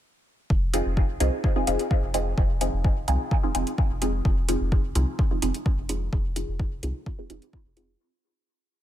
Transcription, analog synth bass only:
0.50 0.81 F1 medium
0.86 1.16 F1 medium
1.20 1.30 C2 medium
1.67 1.76 F1 medium
2.03 2.33 F1 medium
2.38 2.69 F1 medium
2.73 3.04 F1 medium
3.08 3.17 C2 medium
3.55 3.64 F1 medium
3.90 4.21 F1 medium
4.25 4.56 F1 medium
4.61 4.91 F1 medium
4.95 5.05 C2 medium
5.42 5.51 F1 medium
5.78 6.08 F1 medium
6.13 6.44 F1 loud
6.48 6.79 F1 medium
6.83 6.92 C2 medium
7.30 7.39 F1 medium
7.65 7.96 F1 medium

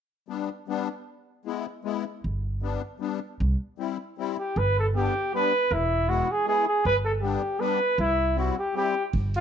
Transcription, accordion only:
0.28 0.49 G3 soft
0.28 0.49 B3 soft
0.28 0.49 D4 soft
0.68 0.88 G3 medium
0.68 0.88 B3 soft
0.68 0.89 D4 medium
1.45 1.65 G#3 soft
1.45 1.66 B3 soft
1.45 1.66 E4 medium
1.85 2.04 G#3 medium
1.85 2.04 B3 medium
1.85 2.05 E4 medium
2.62 2.81 G3 medium
2.62 2.81 B3 soft
2.62 2.82 D4 medium
3.00 3.19 G3 medium
3.00 3.20 B3 soft
3.00 3.20 D4 medium
3.78 3.97 G3 soft
3.78 3.97 C4 medium
3.78 3.98 E4 medium
4.18 4.36 G3 medium
4.18 4.36 C4 medium
4.18 4.37 E4 medium
4.94 5.13 G3 soft
4.94 5.14 B3 soft
4.94 5.14 D4 soft
5.34 5.52 G3 medium
5.34 5.52 B3 soft
5.34 5.53 D4 medium
6.08 6.27 G#3 soft
6.08 6.28 B3 soft
6.08 6.28 E4 medium
6.46 6.65 G#3 medium
6.46 6.65 B3 medium
6.46 6.66 E4 medium
7.22 7.41 G3 medium
7.22 7.41 B3 soft
7.22 7.42 D4 medium
7.60 7.79 G3 medium
7.60 7.79 B3 medium
7.60 7.80 D4 medium
8.36 8.55 G3 medium
8.36 8.55 C4 soft
8.36 8.56 E4 medium
8.75 8.94 G3 medium
8.75 8.95 C4 medium
8.75 8.95 E4 medium

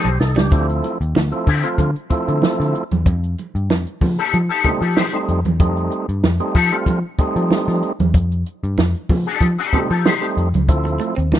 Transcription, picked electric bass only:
0.05 0.18 B1 medium
0.21 0.35 C2 medium
0.38 0.51 C#2 medium
0.52 0.80 D2 loud
1.01 1.14 D#2 loud
1.16 1.30 D2 loud
1.47 1.62 D3 loud
1.78 1.93 D3 medium
2.11 muted picked electric bass stroke soft
2.29 2.41 D3 medium
2.60 2.73 D3 medium
2.92 3.05 E2 medium
3.06 3.34 F2 loud
3.55 3.70 G2 medium
3.70 3.85 F2 medium
4.02 4.16 F3 loud
4.34 4.48 F3 loud
4.65 muted picked electric bass stroke soft
4.82 4.95 F3 medium
5.29 5.43 F2 medium
5.45 5.60 E2 medium
5.60 5.88 F2 loud
6.09 6.22 G2 medium
6.24 6.39 F2 medium
6.55 6.70 F3 loud
6.86 7.02 F3 medium
7.19 muted picked electric bass stroke soft
7.36 7.49 F3 medium
7.68 7.81 F3 medium
8.00 8.13 E2 medium
8.15 8.42 F2 loud
8.64 8.76 G2 loud
8.78 8.93 F2 medium
9.10 9.25 F3 medium
9.41 9.56 F3 loud
9.73 muted picked electric bass stroke soft
9.91 10.04 F3 medium
10.37 10.52 F2 medium
10.54 10.67 C#2 medium
10.69 10.97 D2 loud
11.18 11.31 D#2 medium
11.32 11.40 D2 medium

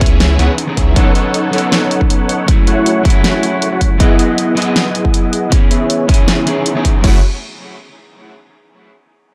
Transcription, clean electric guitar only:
0.00 0.37 E3 medium
0.00 0.37 B3 medium
0.00 0.37 C#4 medium
0.00 0.38 G#4 loud
0.38 0.65 E3 medium
0.38 0.66 B3 medium
0.38 0.66 C#4 medium
0.38 0.66 D#4 medium
0.38 0.66 G#4 medium
0.67 0.94 E3 medium
0.67 0.94 B3 medium
0.67 0.94 C#4 medium
0.67 0.94 D#4 medium
0.67 0.95 G#4 medium
0.94 1.50 F#3 medium
0.94 1.50 B3 medium
0.94 1.51 C#4 medium
0.94 1.51 D#4 medium
0.94 1.52 A4 medium
1.51 2.45 F#3 medium
1.51 2.45 B3 medium
1.51 2.46 C#4 medium
1.51 2.46 D#4 medium
1.55 2.47 A4 loud
2.46 3.02 F#3 medium
2.46 3.02 A3 medium
2.46 3.03 C#4 medium
2.46 3.03 E4 medium
2.46 3.04 G#4 medium
3.03 3.97 F#3 medium
3.03 3.97 A3 medium
3.03 3.98 C#4 medium
3.03 3.98 E4 medium
3.07 3.99 G#4 loud
3.98 4.54 F#3 medium
3.98 4.54 B3 medium
3.98 4.55 E4 medium
3.98 4.56 G#4 loud
3.98 4.55 D#5 medium
4.55 5.49 F#3 loud
4.55 5.49 B3 medium
4.55 5.50 E4 medium
4.55 5.51 G#4 loud
4.55 5.50 D#5 medium
5.50 6.06 E3 medium
5.50 6.06 B3 medium
5.50 6.07 C#4 medium
5.54 6.08 G#4 medium
6.08 6.45 E3 medium
6.08 6.45 B3 medium
6.08 6.45 C#4 medium
6.08 6.46 G#4 loud
6.46 6.73 E3 medium
6.46 6.73 B3 medium
6.46 6.73 C#4 medium
6.46 6.74 D#4 medium
6.46 6.74 G#4 medium
6.75 7.01 E3 medium
6.75 7.01 B3 medium
6.75 7.02 C#4 medium
6.75 7.02 D#4 medium
6.75 7.02 G#4 loud
7.01 7.17 F#3 medium
7.01 7.17 A3 medium
7.01 7.18 C#4 medium
7.05 7.19 E4 medium
7.05 7.20 G#4 medium

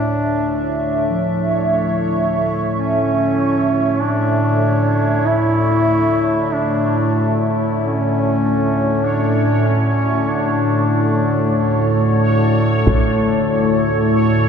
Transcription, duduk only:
0.00 2.07 D4 medium
2.75 4.03 C#4 medium
4.01 5.29 D4 medium
5.27 6.55 E4 loud
6.53 7.52 D4 medium
7.79 9.06 C#4 medium
9.05 9.70 D4 medium
9.68 10.32 C#4 medium
10.31 12.23 D4 medium

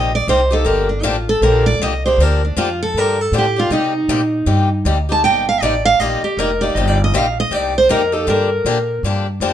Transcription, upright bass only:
0.00 0.27 A#1 medium
0.27 0.64 C2 medium
0.65 1.03 G1 medium
1.03 1.41 A1 medium
1.41 1.79 A#1 medium
1.80 2.17 C2 medium
2.18 2.55 D2 medium
2.57 2.93 F2 medium
2.94 3.31 G2 medium
3.32 3.69 A2 medium
3.71 4.08 C3 medium
4.08 4.46 A#2 medium
4.46 4.84 G2 medium
4.85 5.22 D2 medium
5.24 5.60 G1 medium
5.62 5.98 A1 medium
6.00 6.21 A#1 medium
6.23 muted upright bass stroke soft
6.37 6.74 F1 medium
6.75 7.12 G1 medium
7.12 7.50 A#1 medium
7.51 7.88 C2 medium
7.89 8.27 F2 medium
8.27 8.64 G2 medium
8.65 9.02 A#2 medium
9.03 9.40 G2 medium
9.40 9.53 F2 medium

